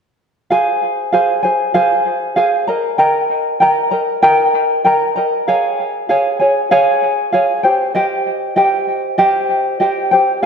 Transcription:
0.50 1.12 G#4 medium
0.50 1.12 C5 medium
0.50 1.11 F5 medium
0.50 1.13 G#5 medium
1.12 1.44 G#4 medium
1.12 1.43 C5 medium
1.12 1.44 F5 medium
1.12 1.42 G#5 medium
1.43 1.74 G#4 soft
1.43 1.74 C5 soft
1.43 1.74 G#5 soft
1.74 2.35 G#4 medium
1.74 2.36 C5 medium
1.74 2.35 F5 medium
1.74 2.37 G#5 medium
2.36 2.68 G#4 medium
2.36 2.68 C5 medium
2.36 2.68 F5 medium
2.36 2.67 G#5 medium
2.67 2.97 A#4 soft
2.67 2.98 D#5 soft
2.67 2.98 A#5 soft
2.98 3.60 A#4 medium
2.98 3.60 D#5 medium
2.98 3.59 G5 medium
2.98 3.61 A#5 medium
3.60 3.91 A#4 soft
3.60 3.90 D#5 medium
3.60 3.92 G5 medium
3.60 3.90 A#5 medium
3.91 4.22 A#4 soft
3.91 4.22 D#5 soft
3.91 4.23 A#5 soft
4.23 4.84 A#4 medium
4.23 4.84 D#5 medium
4.23 4.83 G5 medium
4.23 4.85 A#5 medium
4.84 5.16 A#4 medium
4.84 5.16 D#5 medium
4.84 5.16 G5 medium
4.84 5.15 A#5 medium
5.16 5.47 A#4 soft
5.16 5.47 D#5 soft
5.16 5.47 A#5 soft
5.48 6.08 G#4 medium
5.48 6.09 C#5 medium
5.48 6.08 F5 medium
5.48 6.09 G#5 medium
6.09 6.40 G#4 medium
6.09 6.40 C#5 medium
6.09 6.40 F5 medium
6.09 6.38 G#5 medium
6.39 6.70 G#4 soft
6.39 6.71 C#5 soft
6.39 6.71 G#5 soft
6.71 7.32 G#4 medium
6.71 7.33 C#5 medium
6.71 7.31 F5 medium
6.71 7.33 G#5 medium
7.32 7.64 G#4 medium
7.32 7.64 C#5 medium
7.32 7.64 F5 medium
7.32 7.63 G#5 medium
7.63 7.94 G4 soft
7.63 7.94 C5 soft
7.63 7.95 G5 soft
7.95 8.55 G4 medium
7.95 8.57 C5 medium
7.95 8.55 D#5 medium
7.95 8.56 G5 medium
8.56 9.17 G4 medium
8.56 9.19 C5 medium
8.56 9.17 D#5 medium
8.56 9.18 G5 medium
9.18 9.79 G4 medium
9.18 9.81 C5 medium
9.18 9.79 D#5 medium
9.18 9.81 G5 medium
9.80 10.12 G4 medium
9.80 10.11 C5 medium
9.80 10.11 D#5 medium
9.80 10.10 G5 medium
10.11 10.42 G4 soft
10.11 10.42 C5 soft
10.11 10.43 G5 soft

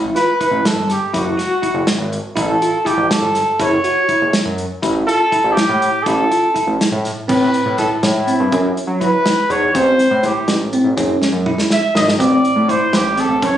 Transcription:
0.00 0.10 A1 loud
0.15 0.31 F4 medium
0.15 0.38 B4 medium
0.15 snare soft
0.15 closed hi-hat medium
0.41 0.71 E4 medium
0.41 0.68 B4 medium
0.41 kick medium
0.41 closed hi-hat soft
0.51 0.61 A1 medium
0.65 0.90 A4 medium
0.65 snare loud
0.65 closed hi-hat medium
0.76 0.96 G1 medium
0.90 1.13 G4 medium
0.90 snare soft
0.90 closed hi-hat medium
1.13 1.33 F#1 loud
1.13 1.29 E4 medium
1.13 2.09 F#4 medium
1.13 kick medium
1.13 closed hi-hat medium
1.37 1.53 F#4 medium
1.37 snare soft
1.37 closed hi-hat medium
1.62 1.93 E4 medium
1.62 kick medium
1.62 closed hi-hat soft
1.74 1.84 F#1 medium
1.87 snare medium
1.87 closed hi-hat medium
1.98 2.18 G#1 medium
2.13 closed hi-hat medium
2.36 2.57 A1 loud
2.36 2.51 E4 medium
2.36 kick medium
2.36 closed hi-hat medium
2.41 2.88 A4 medium
2.62 2.77 F4 medium
2.62 closed hi-hat medium
2.85 3.16 E4 medium
2.85 3.10 G4 medium
2.85 kick medium
2.85 closed hi-hat medium
2.97 3.07 A1 medium
3.11 3.62 A4 medium
3.11 snare medium
3.11 closed hi-hat medium
3.22 3.42 G1 medium
3.35 snare soft
3.35 closed hi-hat medium
3.59 3.79 F#1 loud
3.59 3.75 E4 medium
3.59 4.59 C#5 loud
3.59 kick medium
3.59 closed hi-hat medium
3.84 3.99 F#4 medium
3.84 closed hi-hat medium
4.08 4.39 E4 medium
4.08 kick medium
4.08 closed hi-hat soft
4.21 4.31 F#1 medium
4.33 snare loud
4.33 closed hi-hat medium
4.45 4.65 F#2 medium
4.58 closed hi-hat medium
4.82 5.03 A1 loud
4.82 4.98 E4 medium
4.82 kick medium
4.82 closed hi-hat medium
5.07 5.22 F4 medium
5.07 5.54 A4 medium
5.07 closed hi-hat medium
5.32 5.62 E4 medium
5.32 kick medium
5.32 closed hi-hat soft
5.44 5.54 A1 medium
5.52 6.05 G4 medium
5.57 snare loud
5.57 closed hi-hat medium
5.69 5.89 A2 medium
5.82 closed hi-hat medium
6.03 6.26 A1 loud
6.03 6.21 E4 medium
6.03 6.78 A4 medium
6.03 kick medium
6.03 closed hi-hat medium
6.31 6.46 F4 medium
6.31 closed hi-hat medium
6.55 6.85 E4 medium
6.55 kick medium
6.55 closed hi-hat medium
6.67 6.77 A1 medium
6.81 snare medium
6.81 closed hi-hat medium
6.92 7.12 A2 medium
7.05 snare soft
7.05 closed hi-hat medium
7.28 7.49 A2 loud
7.28 7.58 C4 medium
7.28 7.75 B4 medium
7.28 kick loud
7.28 crash medium
7.54 closed hi-hat medium
7.66 7.85 A2 medium
7.78 8.09 E4 medium
7.78 7.89 A4 medium
7.78 kick medium
7.78 snare soft
7.78 closed hi-hat soft
8.03 8.32 A2 medium
8.03 8.73 E4 medium
8.03 snare medium
8.03 closed hi-hat medium
8.27 8.42 C4 medium
8.27 closed hi-hat medium
8.40 8.50 G2 medium
8.52 8.72 F#2 loud
8.52 8.82 C#4 medium
8.52 kick loud
8.52 closed hi-hat medium
8.77 closed hi-hat medium
8.87 9.07 F#3 medium
9.00 9.31 E4 medium
9.00 9.53 B4 medium
9.00 kick medium
9.00 closed hi-hat soft
9.26 snare loud
9.26 closed hi-hat medium
9.50 9.69 E2 medium
9.50 9.65 D#4 medium
9.50 9.74 C#5 medium
9.50 closed hi-hat medium
9.75 9.94 A1 loud
9.75 10.05 C4 medium
9.75 10.27 C5 loud
9.75 kick loud
9.75 closed hi-hat medium
9.99 snare soft
9.99 closed hi-hat medium
10.11 10.31 A2 medium
10.23 10.53 E4 medium
10.23 10.49 G4 medium
10.23 kick medium
10.23 snare soft
10.23 closed hi-hat medium
10.48 10.78 A1 medium
10.48 snare loud
10.48 closed hi-hat medium
10.73 10.88 C4 medium
10.73 closed hi-hat medium
10.84 10.94 A1 loud
10.97 11.17 F#1 loud
10.97 11.27 C#4 medium
10.97 kick loud
10.97 closed hi-hat medium
11.22 snare medium
11.32 11.53 F#2 medium
11.46 11.76 E4 medium
11.46 mid tom medium
11.58 snare medium
11.70 11.95 E5 medium
11.70 snare medium
11.95 12.15 G#1 medium
11.95 12.10 D#4 medium
11.95 12.07 D#5 medium
11.95 snare medium
12.08 snare medium
12.19 12.39 A1 loud
12.19 12.49 C4 medium
12.19 12.71 D5 medium
12.19 kick loud
12.19 closed hi-hat medium
12.45 closed hi-hat medium
12.56 12.76 A2 medium
12.68 12.99 E4 medium
12.68 12.97 C5 medium
12.68 kick medium
12.68 closed hi-hat medium
12.93 13.23 A1 medium
12.93 13.22 G4 medium
12.93 snare loud
12.93 closed hi-hat medium
13.17 13.33 C4 medium
13.17 13.46 A4 medium
13.17 snare soft
13.17 closed hi-hat medium
13.29 13.39 A1 loud
13.42 13.58 F#1 loud
13.42 13.58 C#4 medium
13.42 13.58 C#5 medium
13.42 kick loud
13.42 closed hi-hat medium

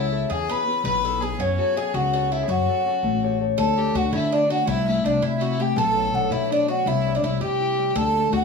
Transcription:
0.00 0.24 C#2 medium
0.00 0.35 C#3 medium
0.00 0.49 B3 soft
0.00 0.10 C#4 medium
0.00 0.27 E4 medium
0.00 0.50 E4 soft
0.00 0.11 F#4 soft
0.00 0.12 A4 medium
0.00 0.34 E5 loud
0.11 1.58 C#4 soft
0.11 1.59 F#4 soft
0.11 0.56 A4 medium
0.30 0.48 E2 medium
0.30 0.90 E3 medium
0.30 0.48 G#4 medium
0.30 0.52 G#4 medium
0.30 0.53 G#5 loud
0.49 0.66 B3 soft
0.49 0.67 E4 soft
0.49 0.67 G#4 medium
0.49 0.82 B4 loud
0.49 0.83 B4 medium
0.49 0.86 B5 loud
0.66 1.02 B3 soft
0.66 1.04 E4 soft
0.66 1.07 G#4 medium
0.83 1.33 B1 medium
0.83 1.44 B2 medium
0.83 1.22 B4 medium
0.83 1.03 B4 medium
0.83 1.25 B5 loud
1.02 1.21 B3 medium
1.02 1.21 E4 medium
1.02 1.22 A4 medium
1.07 1.22 G#4 medium
1.20 4.32 B3 medium
1.20 3.83 E4 soft
1.20 1.40 G#4 medium
1.20 1.66 G#4 medium
1.20 1.43 G#5 loud
1.38 1.56 F#2 medium
1.38 1.99 F#3 medium
1.38 1.60 C#4 medium
1.38 1.78 C#4 medium
1.38 1.79 C#5 loud
1.58 1.76 C#4 medium
1.58 1.78 F#4 medium
1.58 1.76 F#4 soft
1.58 1.77 A4 medium
1.76 2.13 C#4 medium
1.76 2.14 F#4 soft
1.76 1.96 G#4 medium
1.76 1.94 G#4 medium
1.76 2.14 A4 medium
1.76 1.97 G#5 loud
1.94 2.43 C#2 medium
1.94 2.54 C#3 medium
1.94 2.31 F#4 medium
1.94 2.12 F#4 medium
1.94 2.34 F#5 loud
2.13 2.31 C#4 medium
2.13 2.30 F#4 medium
2.13 2.31 F#4 medium
2.13 2.32 A4 medium
2.31 2.68 C#4 soft
2.31 2.48 E4 medium
2.31 2.44 E4 medium
2.31 2.68 F#4 soft
2.31 2.69 A4 soft
2.31 2.49 E5 loud
2.43 2.51 G#4 soft
2.48 2.66 F#2 loud
2.48 3.09 F#3 medium
2.48 3.37 F#4 medium
2.48 3.41 F#4 medium
2.48 3.37 F#5 loud
2.68 2.85 C#4 soft
2.68 2.86 F#4 soft
2.68 2.87 A4 medium
2.85 3.65 C#4 medium
2.85 3.29 F#4 soft
2.85 3.24 A4 medium
3.03 3.52 A1 medium
3.03 3.77 A3 medium
3.23 3.40 G4 medium
3.23 3.40 A4 soft
3.23 3.41 C#5 medium
3.40 4.01 G4 soft
3.40 4.12 A4 soft
3.40 3.65 C#5 medium
3.58 3.91 D2 loud
3.58 4.73 D3 medium
3.58 3.79 A4 medium
3.58 3.95 A4 loud
3.58 3.98 A5 loud
3.78 4.50 A3 medium
3.78 3.96 G4 medium
3.95 4.11 D2 medium
3.95 4.12 F#4 medium
3.95 4.14 F#4 medium
3.95 4.33 F#4 medium
3.95 4.14 F#5 medium
4.12 4.61 D3 loud
4.12 4.31 E4 medium
4.12 6.32 A4 medium
4.12 4.37 E5 loud
4.32 4.48 D4 medium
4.32 4.50 D4 medium
4.32 6.32 F#4 medium
4.32 4.53 D5 medium
4.49 4.87 A3 medium
4.49 4.66 F#4 medium
4.49 4.67 F#4 medium
4.49 4.69 F#5 loud
4.67 5.00 C2 loud
4.67 5.82 C3 medium
4.67 4.86 E4 medium
4.67 5.02 E4 loud
4.67 5.07 E5 loud
4.87 5.59 A3 medium
4.87 5.06 E4 medium
5.04 5.20 C2 medium
5.04 5.41 C4 medium
5.04 5.24 D4 medium
5.04 5.23 D4 medium
5.04 5.23 D5 medium
5.22 5.71 C3 medium
5.22 7.22 E4 medium
5.22 5.41 E4 medium
5.22 5.36 E4 medium
5.22 5.63 E5 loud
5.37 5.48 E4 medium
5.37 5.58 F#4 medium
5.41 5.82 C4 medium
5.49 5.63 E4 medium
5.59 8.15 A3 medium
5.59 5.76 G4 medium
5.59 5.77 G4 medium
5.59 5.79 G5 loud
5.76 6.10 B1 loud
5.76 6.92 B2 medium
5.76 6.33 A4 medium
5.76 6.28 A4 loud
5.76 6.16 A5 loud
5.96 6.68 F#3 medium
6.14 6.30 B1 medium
6.14 6.51 D4 medium
6.14 6.34 F#5 loud
6.31 6.80 B2 medium
6.31 6.52 E4 medium
6.31 6.50 E4 medium
6.31 7.12 F#4 medium
6.31 6.52 E5 loud
6.51 6.70 D4 medium
6.51 8.44 D4 medium
6.51 6.68 D4 medium
6.51 6.72 D5 medium
6.68 6.91 F#3 soft
6.68 6.87 F#4 medium
6.68 6.89 F#4 medium
6.68 6.90 F#5 loud
6.86 7.19 C2 loud
6.86 8.01 C3 medium
6.86 7.13 E4 loud
6.86 7.15 E4 medium
6.86 7.18 E5 loud
7.06 7.77 G3 medium
7.15 7.23 D4 medium
7.15 7.26 D4 medium
7.15 7.27 D5 medium
7.23 7.39 C2 medium
7.23 7.59 E4 medium
7.23 7.41 E4 medium
7.23 7.42 E5 loud
7.40 7.89 C3 medium
7.40 8.40 G4 medium
7.40 7.92 G4 medium
7.40 7.90 G4 loud
7.40 8.00 G5 loud
7.60 8.44 E4 medium
7.78 8.01 G3 soft
7.90 7.97 G4 medium
7.95 8.29 D2 loud
7.95 8.44 D3 medium
7.95 8.30 A4 loud
7.95 8.34 A4 medium
7.95 8.34 A5 loud
8.15 8.44 A3 medium
8.33 8.44 D2 medium
8.33 8.44 F#4 medium
8.33 8.44 F#5 medium

